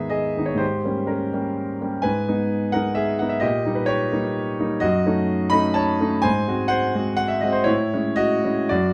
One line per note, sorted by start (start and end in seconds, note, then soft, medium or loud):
0.00 0.55 G#2 medium
0.00 0.37 D#3 soft
0.00 0.38 B3 soft
0.00 0.38 D#4 soft
0.00 0.11 G#4 medium
0.00 0.10 D#5 medium
0.00 0.11 E5 medium
0.10 0.46 G#4 medium
0.10 0.48 D#5 medium
0.37 0.59 D#3 soft
0.37 0.60 B3 soft
0.37 0.60 D#4 soft
0.46 0.60 C#5 medium
0.55 0.82 G#2 medium
0.55 1.07 C5 medium
0.59 1.05 G4 medium
0.84 1.28 G3 soft
0.84 1.28 A#3 soft
0.84 1.07 C#4 soft
1.07 1.32 C#4 soft
1.07 1.55 A#4 medium
1.33 1.77 G3 soft
1.33 1.77 A#3 soft
1.33 1.77 C#4 soft
1.81 2.03 G3 soft
1.81 2.03 A#3 soft
1.81 2.03 C#4 soft
2.02 2.28 G#2 medium
2.02 2.70 B4 medium
2.02 2.74 G#5 medium
2.28 2.71 G#3 soft
2.28 2.71 B3 soft
2.28 2.71 D#4 soft
2.72 3.17 G#3 soft
2.72 3.18 B3 soft
2.72 3.18 D#4 soft
2.72 2.96 A#4 medium
2.72 2.97 F#5 medium
2.95 3.19 G#4 medium
2.95 3.20 E5 medium
3.19 3.42 G#3 soft
3.19 3.42 B3 soft
3.19 3.42 D#4 soft
3.19 3.32 F#5 medium
3.29 3.42 E5 medium
3.40 3.65 A#2 medium
3.40 3.74 G4 medium
3.40 3.76 D#5 medium
3.65 4.08 G3 soft
3.65 4.08 A#3 soft
3.65 4.08 D#4 soft
3.75 3.88 B4 medium
3.86 4.54 G4 medium
3.86 4.57 C#5 medium
4.12 4.55 G3 soft
4.12 4.55 A#3 soft
4.12 4.55 D#4 medium
4.59 4.80 G3 soft
4.59 4.80 A#3 soft
4.59 4.80 D#4 medium
4.80 5.04 F#2 medium
4.80 5.47 F#4 medium
4.80 5.49 D#5 loud
5.06 5.48 A3 medium
5.06 5.48 C#4 soft
5.06 5.48 D#4 medium
5.50 5.96 A3 medium
5.50 5.97 C#4 medium
5.50 5.97 D#4 medium
5.50 5.74 D#5 medium
5.50 5.75 B5 loud
5.74 6.21 C#5 medium
5.74 6.23 A5 medium
6.00 6.22 A3 medium
6.00 6.22 C#4 medium
6.00 6.23 D#4 medium
6.22 6.47 G#2 medium
6.22 6.67 C5 medium
6.22 6.70 G#5 loud
6.47 6.91 G#3 medium
6.47 6.91 C4 medium
6.47 6.92 F#4 medium
6.68 7.15 C5 medium
6.68 7.15 F#5 loud
6.95 7.39 G#3 medium
6.95 7.39 C4 medium
6.95 7.39 F#4 medium
7.17 7.30 F#5 loud
7.28 7.42 E5 medium
7.40 7.65 G#3 soft
7.40 7.66 C4 medium
7.40 7.66 F#4 medium
7.40 7.54 D#5 medium
7.52 7.66 C5 medium
7.64 7.91 A2 medium
7.64 7.93 E4 medium
7.64 8.16 C#5 medium
7.93 8.40 G#3 soft
7.93 8.40 C#4 medium
7.93 8.41 E4 medium
8.16 8.66 F#4 medium
8.16 8.70 D#5 loud
8.44 8.68 G#3 soft
8.44 8.68 C#4 soft
8.44 8.68 E4 medium
8.69 8.93 F#2 medium
8.69 8.93 F#4 medium
8.69 8.93 D5 medium